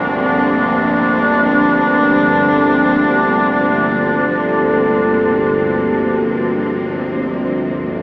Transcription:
Already playing: G1 D2 G2 C3 F3 A#3 C4 D4 A#4
0.23 D4

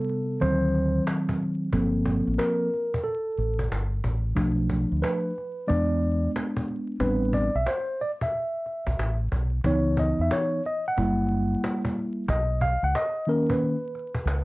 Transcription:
Already playing: C3 G3 B3 A4
0.09 cajon slap
0.40 D2 D#3 F#3 C4 C5, cajon bass, cajon slap
0.74 cajon slap
1.07 cajon slap
1.29 cajon bass
1.40 cajon slap
1.73 G1 F3 A#3 C4 A4, cajon bass
2.05 cajon bass
2.27 A1
2.38 A#4, cajon slap
2.74 cajon slap
2.94 cajon bass
3.04 A4, cajon slap
3.38 A1, cajon slap
3.59 cajon bass
3.71 G1, cajon slap
4.04 A1, cajon bass
4.35 B1 F3 A3 D4, cajon bass
4.70 cajon bass
4.92 D2
5.02 B4, cajon slap
5.38 cajon slap
5.67 E2 G#3 B3 D4 D5, cajon bass, cajon slap
6.03 cajon slap
6.36 cajon slap
6.57 cajon bass
6.68 cajon slap
7.00 A1 G3 B3 C4 D4 B4, cajon bass
7.33 D5, cajon bass
7.55 B1 E5
7.66 C5, cajon slap
8.01 D5, cajon slap
8.21 E5, cajon bass
8.32 cajon slap
8.66 cajon slap
8.87 B1, cajon bass
8.99 A1, cajon slap
9.32 B1, cajon bass
9.64 C#2 E3 B3 D#4 C#5, cajon bass
9.97 D#5, cajon bass
10.19 E2 E5
10.31 C#5, cajon slap
10.66 D#5, cajon slap
10.88 F#5
10.96 F#1 G3 A#3 E4, cajon bass, cajon slap
11.31 cajon slap
11.64 cajon slap
11.85 cajon bass
11.97 cajon slap
12.28 B1 D#5, cajon bass
12.61 F5, cajon bass
12.83 C#2 F#5
12.95 D#5, cajon slap
13.27 D#3 A#3 C#4 A#4, cajon slap
13.50 B4, cajon bass
13.60 cajon slap
13.95 cajon slap
14.15 cajon bass
14.25 C#2, cajon slap

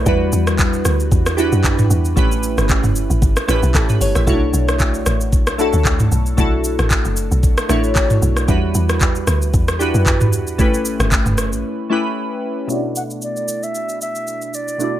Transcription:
0.06 E2 G3 D4 E4 F#4 B4, kick, shaker
0.32 E2, shaker
0.47 cross-stick, shaker
0.58 kick, clap, shaker
0.73 shaker
0.85 D2, cross-stick, shaker
1.00 shaker
1.12 E2, kick, shaker
1.26 cross-stick, shaker
1.37 D4 E4 F#4 G4 B4, shaker
1.52 F#2, shaker
1.64 kick, clap, shaker
1.79 mid tom, shaker
1.90 E2, shaker
2.05 shaker
2.16 A1 A3 C#4 E4 G4 B4, kick, shaker
2.32 shaker
2.43 shaker
2.58 G1, cross-stick, shaker
2.69 kick, clap, shaker
2.84 F#1, mid tom, shaker
2.96 shaker
3.10 A1, shaker
3.22 G1, kick, shaker
3.36 cross-stick, shaker
3.47 A1 A3 C#4 E4 G4 B4, cross-stick, shaker
3.63 B1, shaker
3.74 A1 A4, kick, clap, shaker
3.89 B4, mid tom, shaker
4.01 G1 C#5, open hi-hat, shaker
4.15 A1 E5, cross-stick, shaker
4.26 B1 A3 C#4 E4 F#4 C#5, kick, shaker
4.34 D4
4.53 B1, shaker
4.68 cross-stick, shaker
4.79 kick, clap, shaker
4.94 shaker
5.06 A1, cross-stick, shaker
5.21 shaker
5.33 B1, kick, shaker
5.47 cross-stick, shaker
5.58 A3 D4 E4 F#4 A4, shaker
5.73 D2, shaker
5.85 kick, clap, shaker
6.00 mid tom, shaker
6.12 B1, shaker
6.26 shaker
6.37 B1 A3 D4 E4 F#4 A4, kick, shaker
6.64 shaker
6.79 A1, cross-stick, shaker
6.90 kick, clap, shaker
7.05 F#1, shaker
7.17 shaker
7.31 B1, shaker
7.43 kick, shaker
7.57 cross-stick, shaker
7.69 A1 A3 D4 E4 F#4 C#5, cross-stick, shaker
7.84 shaker
7.96 kick, clap, shaker
8.10 mid tom, shaker
8.22 B1, shaker
8.37 cross-stick, shaker
8.48 E2 G3 D4 E4 F#4 B4, kick, shaker
8.75 E2, shaker
8.89 cross-stick, shaker
9.00 kick, clap, shaker
9.15 shaker
9.27 D2, cross-stick, shaker
9.42 shaker
9.54 E2, kick, shaker
9.68 cross-stick, shaker
9.79 D4 E4 F#4 G4 B4, shaker
9.94 F#2, shaker
10.06 kick, clap, shaker
10.21 mid tom, shaker
10.32 E2, shaker
10.47 shaker
10.58 A1 A3 C#4 E4 G4 B4, kick, shaker
10.74 shaker
10.85 shaker
11.00 G1, cross-stick, shaker
11.11 kick, clap, shaker
11.26 F#1, mid tom, shaker
11.38 cross-stick, shaker
11.52 A1, shaker
11.90 A3 C#4 E4 G4 B4
12.67 B2 A3 C#4 E4, shaker
12.72 F#4 D5
12.76 D4
12.96 F#5, shaker
13.10 shaker
13.22 D5, shaker
13.37 shaker
13.48 shaker
13.63 E5, shaker
13.75 shaker
13.89 shaker
14.01 E5, shaker
14.15 shaker
14.27 shaker
14.42 shaker
14.54 D5, shaker
14.68 shaker
14.78 B2 A3 D4 E4, shaker
14.83 F#4 D5

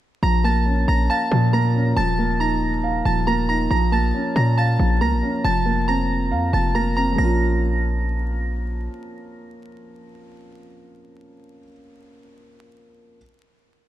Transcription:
0.23 A#1 F3 A#5 A#6
0.44 A#3 A5 A6
0.66 C#4
0.88 A#1 A#5 A#6
1.10 F5 A5 A6
1.31 A#2 F3
1.53 A#3 A#5 A#6
1.74 C#4
1.96 D#1 F3 A5 A6
2.19 A#3
2.40 D#4 A#5 A#6
2.84 F5
3.05 D#1 F3 A5 A6
3.27 A#3 A#5 A#6
3.49 D#4 A#5 A#6
3.71 A#1 F3 A#5 A#6
3.92 A#3 A5 A6
4.14 C#4
4.36 A#2 A#5 A#6
4.57 F5 A5 A6
4.79 A#1 F3
5.01 C#2 A#3 A#5 A#6
5.12 A#1
5.23 C#4
5.45 F1 F3 A5 A6
5.66 A#3
5.88 C4 A#5 A#6
6.31 F2 F5
6.53 F1 F3 A5 A6
6.75 A#3 A#5 A#6
6.96 C4 A#5 A#6
7.12 F3
7.16 A#1 A#3 A#6
7.20 C#4 F4

